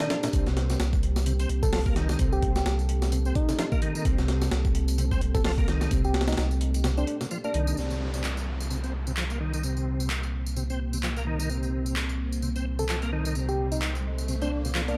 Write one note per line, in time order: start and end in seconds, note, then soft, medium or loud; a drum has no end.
0.00 0.09 D#3 loud
0.00 7.73 A#3 medium
0.00 7.73 C4 medium
0.00 0.46 D4 loud
0.00 7.73 G4 medium
0.00 0.32 A#4 medium
0.00 snare loud
0.00 closed hi-hat medium
0.10 0.17 F3 medium
0.10 snare loud
0.10 closed hi-hat medium
0.23 0.28 A#2 medium
0.23 snare loud
0.23 closed hi-hat medium
0.23 tambourine medium
0.33 0.44 C2 loud
0.33 0.79 C3 medium
0.33 7.76 A4 medium
0.33 kick loud
0.33 closed hi-hat medium
0.33 tambourine soft
0.46 0.76 C2 medium
0.46 snare soft
0.46 tambourine soft
0.57 snare medium
0.57 closed hi-hat medium
0.70 snare soft
0.70 tambourine medium
0.80 1.46 C2 loud
0.80 snare loud
0.80 closed hi-hat medium
0.80 tambourine medium
0.93 kick medium
0.93 tambourine soft
1.03 closed hi-hat medium
1.16 snare soft
1.16 tambourine medium
1.26 1.33 C3 medium
1.26 closed hi-hat medium
1.26 tambourine medium
1.39 1.49 C4 medium
1.39 closed hi-hat soft
1.39 tambourine soft
1.49 2.16 C2 medium
1.49 closed hi-hat medium
1.63 1.68 C3 medium
1.63 1.69 A4 medium
1.63 kick medium
1.63 tambourine medium
1.73 1.80 F3 medium
1.73 1.81 A4 medium
1.73 snare loud
1.73 open hi-hat medium
1.73 tambourine medium
1.86 1.95 A#3 medium
1.86 kick medium
1.86 tambourine soft
1.96 2.08 D#3 medium
1.96 snare medium
1.96 closed hi-hat medium
2.09 2.19 D#3 medium
2.09 snare soft
2.09 tambourine medium
2.19 2.30 C2 loud
2.19 2.65 C3 medium
2.19 kick loud
2.19 closed hi-hat medium
2.19 tambourine soft
2.32 2.62 C2 medium
2.32 2.51 G4 medium
2.32 tambourine soft
2.42 kick loud
2.42 closed hi-hat medium
2.56 2.62 G4 medium
2.56 snare medium
2.56 tambourine medium
2.66 3.32 C2 loud
2.66 2.74 G4 medium
2.66 snare loud
2.66 closed hi-hat medium
2.66 tambourine soft
2.79 tambourine soft
2.89 closed hi-hat medium
3.02 snare medium
3.02 tambourine medium
3.12 3.19 C3 medium
3.12 closed hi-hat medium
3.12 tambourine medium
3.25 3.35 C4 medium
3.25 tambourine soft
3.35 3.82 D#4 medium
3.35 kick loud
3.35 closed hi-hat medium
3.49 3.54 C3 medium
3.49 snare soft
3.49 tambourine medium
3.59 3.66 F3 medium
3.59 snare loud
3.59 closed hi-hat medium
3.59 tambourine soft
3.72 3.81 A#3 medium
3.72 kick loud
3.72 tambourine soft
3.82 3.94 D#3 medium
3.82 closed hi-hat medium
3.95 4.05 D#3 medium
3.95 tambourine medium
4.05 4.16 C2 loud
4.05 4.51 C3 medium
4.05 kick loud
4.05 closed hi-hat medium
4.05 tambourine soft
4.18 4.48 C2 medium
4.18 snare soft
4.18 tambourine soft
4.28 snare medium
4.28 closed hi-hat medium
4.41 snare medium
4.41 tambourine medium
4.51 5.18 C2 loud
4.51 snare loud
4.51 closed hi-hat medium
4.51 tambourine medium
4.65 kick loud
4.65 tambourine soft
4.75 closed hi-hat medium
4.88 closed hi-hat soft
4.88 tambourine medium
4.98 5.05 C3 medium
4.98 closed hi-hat medium
4.98 tambourine medium
5.11 5.21 C4 medium
5.11 kick medium
5.11 tambourine soft
5.21 5.88 C2 medium
5.21 closed hi-hat medium
5.35 5.40 C3 medium
5.35 5.41 A4 medium
5.35 kick medium
5.35 tambourine medium
5.45 5.52 F3 medium
5.45 5.53 A4 medium
5.45 snare loud
5.45 open hi-hat medium
5.45 tambourine medium
5.58 5.67 A#3 medium
5.58 kick loud
5.58 tambourine soft
5.68 5.80 D#3 medium
5.68 snare medium
5.68 closed hi-hat medium
5.81 5.91 D#3 medium
5.81 snare soft
5.81 tambourine medium
5.91 6.02 C2 loud
5.91 6.37 C3 medium
5.91 kick loud
5.91 closed hi-hat medium
5.91 tambourine medium
6.04 6.34 C2 medium
6.04 6.23 G4 medium
6.04 tambourine soft
6.14 snare medium
6.14 closed hi-hat medium
6.21 snare medium
6.21 closed hi-hat medium
6.28 6.34 D#4 medium
6.28 snare medium
6.28 closed hi-hat medium
6.28 tambourine medium
6.33 snare medium
6.33 closed hi-hat medium
6.37 7.04 C2 loud
6.37 6.47 D#4 medium
6.37 snare loud
6.37 closed hi-hat medium
6.37 tambourine medium
6.51 tambourine soft
6.61 closed hi-hat medium
6.74 closed hi-hat soft
6.74 tambourine medium
6.84 6.91 C3 medium
6.84 snare loud
6.84 closed hi-hat medium
6.84 tambourine medium
6.97 7.07 C4 medium
6.97 7.04 D4 medium
6.97 tambourine soft
7.07 7.16 D4 medium
7.07 closed hi-hat medium
7.21 7.26 C3 medium
7.21 snare soft
7.21 tambourine medium
7.31 7.38 F3 medium
7.31 tambourine medium
7.44 7.53 A#3 medium
7.44 7.78 D4 loud
7.44 tambourine soft
7.54 7.73 C2 medium
7.54 7.67 D#3 medium
7.54 closed hi-hat medium
7.67 7.77 D#3 medium
7.67 tambourine medium
7.77 14.97 C2 medium
7.77 8.23 C3 medium
7.77 14.97 A#3 medium
7.77 14.97 C4 medium
7.77 11.46 G4 medium
7.77 14.97 C5 medium
7.77 tambourine medium
7.77 downlifter medium
7.90 tambourine soft
8.14 tambourine medium
8.24 clap loud
8.24 tambourine medium
8.37 tambourine soft
8.60 tambourine medium
8.70 8.77 C3 medium
8.70 tambourine medium
8.84 8.93 C4 medium
8.84 tambourine soft
9.07 9.12 C3 medium
9.07 tambourine medium
9.17 9.24 F3 medium
9.17 clap loud
9.17 tambourine soft
9.30 9.39 A#3 medium
9.30 tambourine soft
9.40 9.53 D#3 medium
9.53 9.63 D#3 medium
9.53 tambourine medium
9.63 10.09 C3 medium
9.63 tambourine medium
9.77 tambourine soft
10.00 tambourine medium
10.10 clap loud
10.10 tambourine medium
10.23 tambourine soft
10.46 tambourine medium
10.56 10.63 C3 medium
10.56 tambourine medium
10.70 10.79 C4 medium
10.70 tambourine soft
10.93 10.98 C3 medium
10.93 tambourine medium
11.03 11.10 F3 medium
11.03 clap loud
11.03 tambourine medium
11.16 11.25 A#3 medium
11.16 tambourine soft
11.27 11.39 D#3 medium
11.40 11.49 D#3 medium
11.40 tambourine medium
11.49 11.95 C3 medium
11.49 14.97 A4 medium
11.49 tambourine soft
11.49 riser medium
11.63 tambourine soft
11.86 tambourine medium
11.96 clap loud
11.96 tambourine medium
12.09 tambourine soft
12.32 tambourine medium
12.42 12.49 C3 medium
12.42 tambourine medium
12.56 12.65 C4 medium
12.56 tambourine soft
12.79 12.84 C3 medium
12.79 12.85 A4 medium
12.79 tambourine medium
12.89 12.96 F3 medium
12.89 12.98 A4 medium
12.89 clap loud
12.89 tambourine medium
13.02 13.11 A#3 medium
13.02 tambourine soft
13.13 13.25 D#3 medium
13.25 13.35 D#3 medium
13.25 tambourine medium
13.35 13.81 C3 medium
13.35 tambourine soft
13.49 13.67 G4 medium
13.49 tambourine soft
13.72 13.78 D#4 medium
13.72 tambourine medium
13.82 13.90 D#4 medium
13.82 clap loud
13.82 tambourine soft
13.95 tambourine soft
14.18 tambourine medium
14.28 14.35 C3 medium
14.28 tambourine soft
14.42 14.51 C4 medium
14.42 14.48 D4 medium
14.42 tambourine soft
14.52 14.60 D4 medium
14.65 14.70 C3 medium
14.65 tambourine medium
14.75 14.82 F3 medium
14.75 clap loud
14.75 tambourine soft
14.88 14.97 A#3 medium
14.88 14.97 D4 medium
14.88 tambourine soft